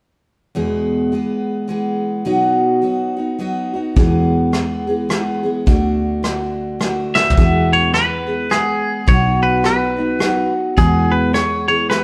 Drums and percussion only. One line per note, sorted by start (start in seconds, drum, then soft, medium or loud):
3.96 kick loud
3.96 closed hi-hat soft
4.53 cross-stick medium
4.53 closed hi-hat soft
5.10 cross-stick medium
5.10 closed hi-hat soft
5.67 kick medium
5.67 closed hi-hat medium
6.24 cross-stick medium
6.24 closed hi-hat medium
6.81 cross-stick medium
6.81 closed hi-hat medium
7.15 snare medium
7.30 floor tom medium
7.37 kick medium
7.37 closed hi-hat soft
7.94 cross-stick medium
7.94 closed hi-hat soft
8.51 cross-stick medium
8.51 closed hi-hat medium
9.08 kick loud
9.08 closed hi-hat soft
9.64 cross-stick medium
9.64 closed hi-hat soft
10.20 cross-stick medium
10.20 closed hi-hat medium
10.78 kick medium
10.78 closed hi-hat medium
11.34 cross-stick medium
11.34 closed hi-hat medium
11.91 cross-stick medium
11.91 closed hi-hat medium